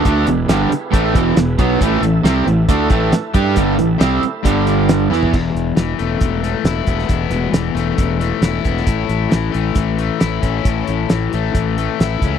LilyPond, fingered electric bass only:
\new Staff \with { instrumentName = "Fingered electric bass" } { \clef bass \time 4/4 \key a \major \tempo 4 = 136 d,8 e,,8 g,,8 r8 a,,8 e,,8 e,,8 b,,8 | a,,8 a,,8 c,8 a,,8 d,8 a,,8 r8 g,8 | g,,8 a,,8 c,8 r8 g,,4. e,8 | e,,8 e,,8 e,,8 e,,8 e,,4 e,,8 e,,8 |
e,,8 e,,8 e,,8 e,,8 e,,4 e,,8 e,,8 | a,,8 a,,8 a,,8 a,,8 a,,4 a,,8 a,,8 | a,,8 a,,8 a,,8 a,,8 a,,4 a,,8 cis,8 | }